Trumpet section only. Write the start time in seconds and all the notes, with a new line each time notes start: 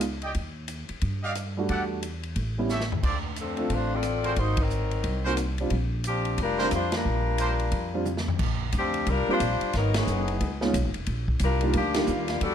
0.23 G4 D5 D#5 G5
1.23 G4 D5 D#5 F5
1.70 G4 A4 D5 F#5
2.70 G4 A4 C#5 E5
3.03 F4 A4 C5 D5
4.24 F#4 G#4 A#4 C5
5.25 F#4 G#4 A#4 C5
6.59 D4 G4 A#4 C5
7.40 D4 G4 A#4 C5